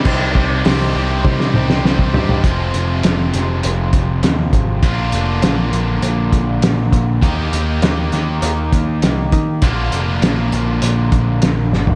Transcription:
<<
  \new Staff \with { instrumentName = "Upright piano" } { \time 4/4 \key f \dorian \tempo 4 = 100 <ees' g' c''>8 <ees' g' c''>8 <ees' g' c''>8 <ees' g' c''>8 <ees' g' c''>8 <ees' g' c''>8 <ees' g' c''>8 <ees' g' c''>8 | r1 | r1 | r1 |
r1 | }
  \new Staff \with { instrumentName = "Overdriven electric guitar" } { \clef bass \time 4/4 \key f \dorian <c ees g c' g'>8 <c ees g c' g'>8 <c ees g c' g'>8 <c ees g c' g'>8 <c ees g c' g'>8 <c ees g c' g'>8 <c ees g c' g'>8 <c ees g c' g'>8 | <f, c f aes c' f'>1 | <bes, d bes d' f'>1 | <ees bes ees' g'>1 |
<bes, d bes d' f'>1 | }
  \new Staff \with { instrumentName = "Picked electric bass" } { \clef bass \time 4/4 \key f \dorian c,4 c,8 c,8 c,8 c,8 c,8 g,8 | f,,8 f,,8 f,,8 f,,8 f,,8 f,,8 ees,8 aes,,8 | bes,,8 f,,8 bes,,8 bes,,8 bes,,8 bes,,8 bes,,8 bes,,8 | ees,8 ees,8 ees,8 ees,8 ees,8 ees,8 c,8 ees8 |
bes,,8 f,,8 bes,,8 bes,,8 bes,,8 bes,,8 bes,,8 g,,8 | }
  \new DrumStaff \with { instrumentName = "Drums" } \drummode { \time 4/4 <cymc bd>8 bd8 <hho sn>4 <bd tommh>16 sn16 toml16 sn16 sn16 bd16 tomfh16 tomfh16 | <hh bd>8 hh8 <hh sn>8 <hh sn>8 hh8 <hh bd>8 <hh sn>8 <hh bd>8 | <hh bd>8 hh8 <hh sn>8 hh8 hh8 <hh bd>8 <hh sn>8 <hh bd>8 | <hh bd>8 hh8 <hh sn>8 <hh sn>8 hh8 <hh bd>8 <hh sn>8 <hh bd>8 |
<hh bd>8 hh8 <hh sn>8 hh8 hh8 <hh bd>8 <hh sn>8 sn16 tomfh16 | }
>>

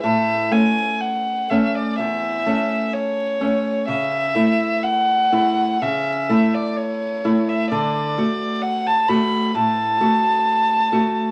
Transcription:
<<
  \new Staff \with { instrumentName = "Violin" } { \time 4/4 \key a \major \tempo 4 = 64 e''8 gis''8 fis''8 e''16 d''16 e''4 cis''4 | e''4 fis''4 e''8. d''16 cis''8. e''16 | d''4 fis''16 a''16 b''8 a''2 | }
  \new Staff \with { instrumentName = "Nylon-string guitar" } { \time 4/4 \key a \major a,8 <a cis'>4 <a cis'>8 e,8 <a cis'>4 <a cis'>8 | cis8 <a e'>4 <a e'>8 cis8 <a e'>4 <a e'>8 | d8 <a fis'>4 <a fis'>8 a,8 <a fis'>4 <a fis'>8 | }
>>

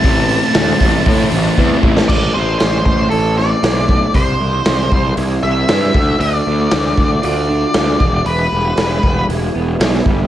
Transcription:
<<
  \new Staff \with { instrumentName = "Lead electric guitar" } { \time 4/4 \key a \minor \tempo 4 = 117 a''2.~ a''8 r8 | d''8 c''8 c''8 c''8 a'8 d''4. | c''2 r8 e''4. | d''2 d''2 |
b'2 r2 | }
  \new Staff \with { instrumentName = "Distorted electric guitar" } { \time 4/4 \key a \minor <a, e a c' e'>4 <a, e a c' e'>8 <a c' e'>8 <e a c' e'>4 <e a c' e'>8 <a c' e'>8 | r1 | r1 | r1 |
r1 | }
  \new Staff \with { instrumentName = "Clean electric guitar" } { \clef bass \time 4/4 \key a \minor r1 | a,8 e8 e8 a8 e'8 c'8 e'8 a8 | c8 e8 e8 g8 e'8 c'8 e'8 d8 | d8 a8 d8 a8 f'8 d'8 f'8 e8 |
e8 g8 e8 g8 e'8 b8 e'8 g8 | }
  \new Staff \with { instrumentName = "Picked electric bass" } { \clef bass \time 4/4 \key a \minor a,,4 d,8 a,,8 a,8 a,,8 e,8 a,,8 | a,,8 a,,8 a,,8 a,,8 a,,4 b,,4 | c,8 c,8 c,8 c,8 c,8 c,8 g,8 d,8 | d,8 d,8 d,8 d,8 d,4 d,8 e,,8 |
e,,8 e,,8 e,,8 e,,8 e,,8 e,,8 b,,8 g,,8 | }
  \new DrumStaff \with { instrumentName = "Drums" } \drummode { \time 4/4 <hho bd>8 hho8 <hho sn>8 <hho bd>8 <hho bd>8 hho8 bd8 bd16 sn16 | <cymc bd>4 <hho sn>8 bd8 hho8 sn8 <hho sn>8 bd8 | <hho bd>4 <hho sn>8 bd8 hho4 <hho sn>8 bd8 | hho4 <hho sn>8 bd8 hho4 <hho sn>8 bd8 |
hho4 <hho sn>8 bd8 hho4 <hho sn>16 sn16 bd8 | }
>>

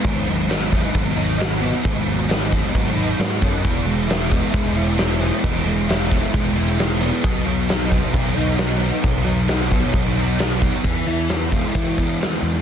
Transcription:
<<
  \new Staff \with { instrumentName = "Distorted electric guitar" } { \time 4/4 \key e \major \tempo 4 = 133 gis,8 fis8 dis'8 b8 fis8 dis'8 fis8 b8 | gis,8 fis8 dis'8 b8 fis8 dis'8 fis8 b8 | e8 gis8 e'8 b8 gis8 e'8 gis8 b8 | e8 gis8 e'8 b8 gis8 e'8 gis8 b8 |
b,8 fis8 dis'8 b8 fis8 dis'8 fis8 b8 | b,8 fis8 dis'8 b8 fis8 dis'8 fis8 b8 | e8 e'8 b8 gis8 e'8 b8 gis8 e8 | }
  \new Staff \with { instrumentName = "Picked electric bass" } { \clef bass \time 4/4 \key e \major gis,,2 gis,,2 | gis,,2 gis,,4 gis,8 fis,8 | e,,2 e,,2 | e,,2 e,,2 |
b,,2 b,,2 | b,,2 b,,2 | e,8 e,4. e4. e,8 | }
  \new DrumStaff \with { instrumentName = "Drums" } \drummode { \time 4/4 <cymc bd>4 <cymc sn>8 bd8 <cymc bd>4 <cymc sn>4 | <cymc bd>4 <cymc sn>8 bd8 <cymc bd>4 <cymc sn>8 bd8 | <cymc bd>4 <cymc sn>8 bd8 <cymc bd>4 <cymc sn>4 | <cymc bd>16 sn8. <cymc sn>8 <bd sn>8 <cymc bd>4 <cymc sn>4 |
<cymc bd>4 <cymc sn>8 bd8 <cymc bd>4 <cymc sn>4 | <cymc bd>4 <cymc sn>8 bd8 <cymc bd>4 <cymc sn>8 bd8 | <cymc bd>8 hh8 <hh sn>8 <hh bd>8 <hh bd>8 <hh bd>8 <hh sn>8 hh8 | }
>>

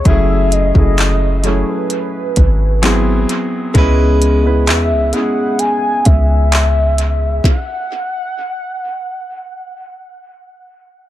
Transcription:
<<
  \new Staff \with { instrumentName = "Soft synth lead" } { \time 4/4 \key cis \minor \tempo 4 = 65 e''8 dis''4 cis''16 b'4.~ b'16 r8 | r4 e''8 fis''8 gis''8 e''4. | fis''2. r4 | }
  \new Staff \with { instrumentName = "Grand piano" } { \time 4/4 \key cis \minor <fis a cis' e' gis'>8 r16 <fis a cis' e' gis'>8 r16 <fis a cis' e' gis'>4. <fis b bis e' gis'>8. r16 | <gis b cis' e' b'>8 r16 <gis b cis' e' b'>8 r16 <gis b cis' e' gis'>4. r4 | r1 | }
  \new Staff \with { instrumentName = "808-style bass" } { \clef bass \time 4/4 \key cis \minor fis,,8. fis,,4 r8. gis,,4 r8 | cis,4 e,16 cis,16 r4 cis,4. | r1 | }
  \new DrumStaff \with { instrumentName = "Drums" } \drummode { \time 4/4 <hh bd>8 hh16 bd16 <hc hh>8 hh8 hh8 <hh bd>8 <hc hh>8 hh8 | <hh bd>8 hh8 <hc hh>8 hh8 hh8 <hh bd>8 <hc hh>8 hh8 | <bd sn>4 r4 r4 r4 | }
>>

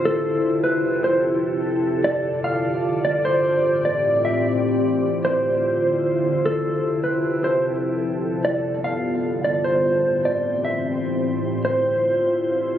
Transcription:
<<
  \new Staff \with { instrumentName = "Clean electric guitar" } { \time 4/4 \key f \lydian \tempo 4 = 150 a'4. b'4 c''8 r4 | r4 d''4 f''4. d''8 | c''4. d''4 e''8 r4 | r4 c''2. |
a'4. b'4 c''8 r4 | r4 d''4 f''4. d''8 | c''4. d''4 e''8 r4 | r4 c''2. | }
  \new Staff \with { instrumentName = "Ambient pad" } { \time 4/4 \key f \lydian << { a'1 | d''1~ | d''1 | c''1 |
a'1~ | a'1 | c''1 | c''1 | } \\ { <f, c e' g'>1 | <g, d f'>1 | <a, e c' g'>1 | <d, d e' f'>1 |
<f, c e' g'>1 | <g, d b f'>1 | <a, e c' g'>1 | <d, d e' f'>1 | } >> }
>>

